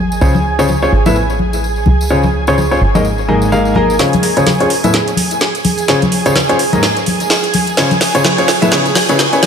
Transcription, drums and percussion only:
0.12 tambourine
0.21 tambourine
0.35 tambourine, high conga
0.59 tambourine
0.69 tambourine, high conga
0.82 tambourine
1.06 tambourine, high conga
1.16 tambourine
1.30 tambourine
1.39 high conga
1.53 tambourine
1.64 tambourine
1.76 tambourine
1.86 high conga
2.01 tambourine
2.09 tambourine
2.23 tambourine, high conga
2.47 tambourine
2.58 tambourine, high conga
2.72 tambourine
2.95 tambourine, high conga
3.05 tambourine
3.18 tambourine
3.28 high conga
3.42 tambourine
3.52 tambourine
3.65 tambourine
3.75 high conga
3.90 tambourine
3.99 snare, closed hi-hat, tambourine
4.13 closed hi-hat, tambourine, high conga
4.23 open hi-hat
4.37 closed hi-hat, tambourine
4.46 snare, closed hi-hat, tambourine, high conga
4.60 closed hi-hat, tambourine
4.70 open hi-hat
4.84 closed hi-hat, tambourine, high conga
4.94 snare, closed hi-hat, tambourine
5.08 closed hi-hat, tambourine
5.17 open hi-hat, high conga
5.31 closed hi-hat, tambourine
5.41 snare, closed hi-hat, tambourine
5.55 closed hi-hat, tambourine
5.65 open hi-hat, high conga
5.78 closed hi-hat, tambourine
5.88 snare, closed hi-hat, tambourine
6.02 closed hi-hat, tambourine, high conga
6.12 open hi-hat
6.26 closed hi-hat, tambourine
6.35 snare, closed hi-hat, tambourine, high conga
6.49 closed hi-hat, tambourine
6.59 open hi-hat
6.73 closed hi-hat, tambourine, high conga
6.83 snare, closed hi-hat, tambourine
6.97 closed hi-hat, tambourine
7.06 open hi-hat, high conga
7.20 closed hi-hat, tambourine
7.30 snare, closed hi-hat, tambourine
7.43 closed hi-hat, tambourine
7.54 open hi-hat, high conga
7.67 closed hi-hat, tambourine
7.77 snare, closed hi-hat, tambourine
7.91 closed hi-hat, tambourine, high conga
8.01 snare, open hi-hat
8.15 closed hi-hat, tambourine
8.24 snare, closed hi-hat, tambourine, high conga
8.38 closed hi-hat, tambourine
8.48 snare, open hi-hat
8.62 closed hi-hat, tambourine, high conga
8.72 snare, closed hi-hat, tambourine
8.86 closed hi-hat, tambourine
8.95 snare, open hi-hat, high conga
9.09 closed hi-hat, tambourine
9.19 snare, closed hi-hat, tambourine
9.32 closed hi-hat, tambourine
9.43 snare, open hi-hat, high conga

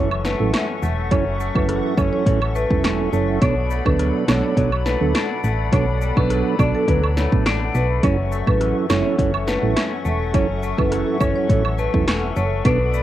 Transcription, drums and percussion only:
0.11 high woodblock
0.25 snare, cabasa
0.53 snare, closed hi-hat, high woodblock
0.82 cabasa
1.11 kick, closed hi-hat, high woodblock
1.40 cabasa
1.55 kick, high woodblock
1.69 cross-stick, closed hi-hat
1.98 kick, cabasa, high woodblock
2.26 kick, closed hi-hat
2.42 high woodblock
2.55 cabasa
2.71 kick
2.84 snare, closed hi-hat, high woodblock
3.13 cabasa
3.42 kick, closed hi-hat, high woodblock
3.71 cabasa
3.86 kick, high woodblock
3.99 cross-stick, closed hi-hat
4.28 snare, cabasa, high woodblock
4.57 kick, closed hi-hat
4.72 high woodblock
4.86 snare, cabasa
5.15 snare, closed hi-hat, high woodblock
5.44 cabasa
5.73 kick, closed hi-hat, high woodblock
6.01 cabasa
6.17 kick, high woodblock
6.30 cross-stick, closed hi-hat
6.59 kick, cabasa, high woodblock
6.88 kick, closed hi-hat
7.04 high woodblock
7.17 snare, cabasa
7.32 kick
7.46 cross-stick, snare, closed hi-hat, high woodblock
7.75 cabasa
8.03 kick, closed hi-hat, high woodblock
8.32 cabasa
8.47 kick, high woodblock
8.61 cross-stick, closed hi-hat
8.90 snare, cabasa, high woodblock
9.19 kick, closed hi-hat
9.34 high woodblock
9.48 snare, cabasa
9.77 snare, closed hi-hat, high woodblock
10.05 cabasa
10.34 kick, closed hi-hat, high woodblock
10.63 cabasa
10.78 kick, high woodblock
10.92 cross-stick, closed hi-hat
11.21 kick, cabasa, high woodblock
11.49 kick, closed hi-hat
11.65 high woodblock
11.78 cabasa
11.94 kick
12.07 snare, closed hi-hat, high woodblock
12.36 cabasa
12.65 kick, closed hi-hat, high woodblock
12.94 cabasa

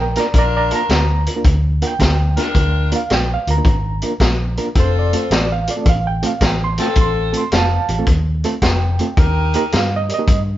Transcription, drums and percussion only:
0.16 snare, closed hi-hat
0.34 kick, closed hi-hat
0.71 closed hi-hat
0.89 snare, closed hi-hat
1.26 closed hi-hat
1.45 kick, closed hi-hat
1.82 closed hi-hat
2.00 kick, snare, closed hi-hat
2.37 snare, closed hi-hat
2.55 kick, closed hi-hat
2.92 closed hi-hat
3.10 snare, closed hi-hat
3.47 closed hi-hat
3.65 kick, closed hi-hat
4.02 closed hi-hat
4.20 kick, snare, closed hi-hat
4.57 closed hi-hat
4.75 kick, closed hi-hat
5.13 closed hi-hat
5.31 snare, closed hi-hat
5.67 closed hi-hat
5.86 kick, closed hi-hat
6.23 closed hi-hat
6.41 kick, snare, closed hi-hat
6.78 snare, closed hi-hat
6.96 kick, closed hi-hat
7.33 closed hi-hat
7.52 snare, closed hi-hat
7.88 closed hi-hat
8.07 kick, closed hi-hat
8.44 closed hi-hat
8.62 kick, snare, closed hi-hat
8.99 closed hi-hat
9.17 kick, closed hi-hat
9.54 closed hi-hat
9.72 snare, closed hi-hat
10.09 closed hi-hat
10.28 kick, closed hi-hat

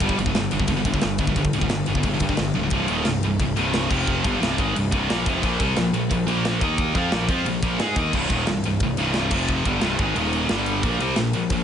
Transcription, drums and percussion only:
0.00 kick, ride
0.09 kick
0.19 ride
0.26 kick
0.35 snare, ride
0.51 ride
0.60 kick
0.68 kick, ride
0.85 kick, ride
0.94 kick
1.01 snare, ride
1.18 kick, ride
1.27 kick
1.36 kick, ride
1.45 kick
1.53 ride
1.61 kick
1.69 snare, ride
1.86 ride
1.95 kick
2.03 kick, ride
2.20 kick, ride
2.29 kick
2.37 snare, ride
2.54 high tom
2.70 kick, ride
2.88 ride
3.05 snare, ride
3.23 ride
3.40 kick, ride
3.57 ride
3.73 snare, ride
3.91 kick, crash
4.07 kick
4.24 kick, ride
4.43 snare, ride
4.58 kick, ride
4.76 ride
4.92 kick, ride
5.10 snare, ride
5.26 kick, ride
5.43 kick, ride
5.60 kick, ride
5.76 snare, ride
5.94 ride
6.11 kick, ride
6.28 ride
6.45 snare, ride
6.61 kick, ride
6.78 kick, ride
6.95 kick, ride
7.12 snare, ride
7.28 kick, ride
7.46 ride
7.63 kick, ride
7.79 snare, ride
7.96 kick, ride
8.13 kick, crash
8.30 kick, ride
8.47 snare, ride
8.64 ride
8.80 kick, ride
8.97 ride
9.14 snare, ride
9.31 kick, crash
9.49 kick
9.65 kick, ride
9.81 snare, ride
9.99 kick, ride
10.16 ride
10.33 ride
10.49 snare, ride
10.66 ride
10.83 kick, ride
11.00 ride
11.16 snare, ride
11.33 ride
11.50 kick, ride

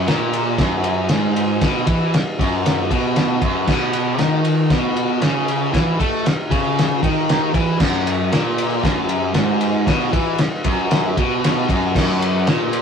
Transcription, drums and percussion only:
0.08 snare, ride
0.33 ride
0.58 kick, snare, ride
0.84 ride
1.09 snare, ride
1.36 ride
1.61 kick, snare, ride
1.87 kick, ride
2.14 snare, ride
2.39 kick, ride
2.66 snare, ride
2.91 kick, ride
3.16 snare, ride
3.42 kick, ride
3.67 kick, snare, crash
3.93 ride
4.19 snare, ride
4.45 ride
4.70 kick, snare, ride
4.96 ride
5.22 snare, ride
5.48 ride
5.74 kick, snare, ride
6.00 kick, ride
6.26 snare, ride
6.51 kick, ride
6.79 snare, ride
7.03 kick, ride
7.29 snare, ride
7.54 kick, ride
7.80 kick, snare, crash
8.07 ride
8.32 snare, ride
8.58 ride
8.84 kick, snare, ride
9.09 ride
9.34 snare, ride
9.61 ride
9.87 kick, snare, ride
10.13 kick, ride
10.38 snare, ride
10.64 kick, ride
10.91 snare, ride
11.17 kick, ride
11.44 snare, ride
11.69 kick, ride
11.95 kick, snare, crash
12.22 ride
12.47 snare, ride
12.73 ride

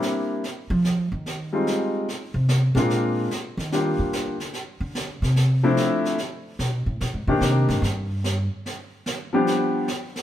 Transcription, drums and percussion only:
0.02 snare
0.44 brush sweep, snare
0.85 snare
1.26 brush sweep, snare
1.67 snare
2.08 brush sweep, snare
2.49 snare
2.76 snare
2.90 brush sweep, snare
3.31 snare
3.59 snare
3.72 brush sweep, snare
4.13 snare
4.40 snare
4.53 brush sweep, snare
4.95 snare
5.23 snare
5.36 brush sweep, snare
5.77 snare
6.05 snare
6.18 brush sweep, snare
6.59 snare
7.01 brush sweep, snare
7.41 snare
7.69 snare
7.83 brush sweep, snare
8.24 snare
8.66 brush sweep, snare
9.06 snare
9.47 brush sweep, snare
9.88 snare
10.16 snare

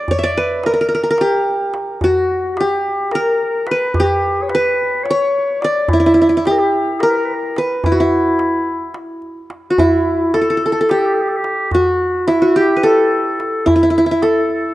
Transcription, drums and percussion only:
0.08 darbuka dum
0.64 darbuka tek
0.91 darbuka ka
1.18 darbuka tek
1.32 darbuka ka
1.46 darbuka ka
1.74 darbuka tek
2.01 darbuka dum
2.29 darbuka ka
2.57 darbuka tek
3.11 darbuka tek
3.67 darbuka tek
3.94 darbuka dum
4.22 darbuka ka
4.49 darbuka tek
5.06 darbuka tek
5.62 darbuka tek
5.88 darbuka dum
6.45 darbuka tek
7.00 darbuka tek
7.56 darbuka tek
7.84 darbuka dum
8.39 darbuka tek
8.94 darbuka tek
9.22 darbuka ka
9.50 darbuka tek
9.78 darbuka dum
10.34 darbuka tek
10.61 darbuka ka
10.89 darbuka tek
11.44 darbuka tek
11.71 darbuka dum
12.28 darbuka tek
12.56 darbuka ka
12.84 darbuka tek
13.40 darbuka tek
13.67 darbuka dum
14.22 darbuka tek
14.51 darbuka ka

